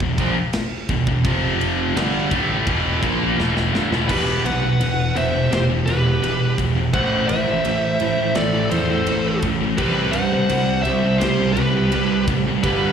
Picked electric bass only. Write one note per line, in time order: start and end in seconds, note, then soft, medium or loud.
0.00 0.17 E1 medium
0.19 0.35 A#1 medium
0.89 1.05 E1 medium
1.07 1.23 E1 medium
1.25 1.92 F1 loud
1.95 2.28 G1 loud
2.31 2.64 A1 medium
2.66 2.99 E1 medium
3.03 3.35 A#1 medium
3.38 3.71 E1 loud
3.73 3.90 G1 loud
3.90 4.07 E1 loud
4.09 4.39 E1 loud
4.44 4.74 B1 medium
4.80 5.10 E1 loud
5.15 5.45 E1 medium
5.51 5.81 E1 loud
5.86 6.16 E1 medium
6.22 6.52 E1 loud
6.58 6.88 E1 medium
6.94 7.24 A1 medium
7.30 7.59 A1 medium
7.66 7.95 A1 loud
8.01 8.31 A2 medium
8.37 8.66 A1 medium
8.72 9.02 E2 medium
9.07 9.37 A1 loud
9.43 9.73 A1 loud
9.79 10.08 C2 medium
10.14 10.44 G2 medium
10.50 10.80 C2 medium
10.86 11.16 C2 medium
11.22 11.51 C2 loud
11.57 11.87 C2 medium
11.94 12.23 C2 loud
12.28 12.58 A1 loud
12.63 12.92 G1 medium